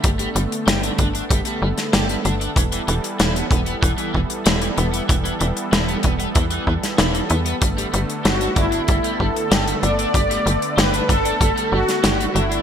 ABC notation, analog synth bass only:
X:1
M:4/4
L:1/8
Q:1/4=95
K:G
V:1 name="Analog synth bass" clef=bass
G,,, G,,, G,,, G,,, G,,, G,,, G,,, G,,, | E,,, E,,, E,,, E,,, E,,, E,,, E,,, E,,, | E,,, E,,, E,,, E,,, E,, E,, E,,, E,, | G,,, G,,, G,,, G,,, G,,, G,,, G,,, G,,, |
G,,, G,,, G,,, G,,, G,,, G,,, G,,, G,,, |]